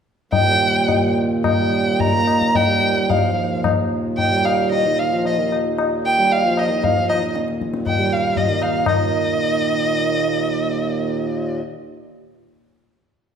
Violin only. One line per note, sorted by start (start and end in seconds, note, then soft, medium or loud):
0.32 1.12 G5 loud
1.46 2.01 G5 medium
2.00 2.56 A#5 medium
2.55 3.10 G5 medium
3.09 3.64 F5 medium
4.17 4.46 G5 medium
4.44 4.71 F5 medium
4.72 5.00 D#5 medium
4.99 5.25 F5 medium
5.26 5.51 D#5 medium
6.06 6.33 G5 medium
6.32 6.60 F5 medium
6.58 6.85 D#5 medium
6.84 7.08 F5 medium
7.09 7.33 D#5 medium
7.87 8.14 G5 medium
8.12 8.38 F5 medium
8.37 8.64 D#5 medium
8.62 8.87 F5 medium
8.88 11.57 D#5 medium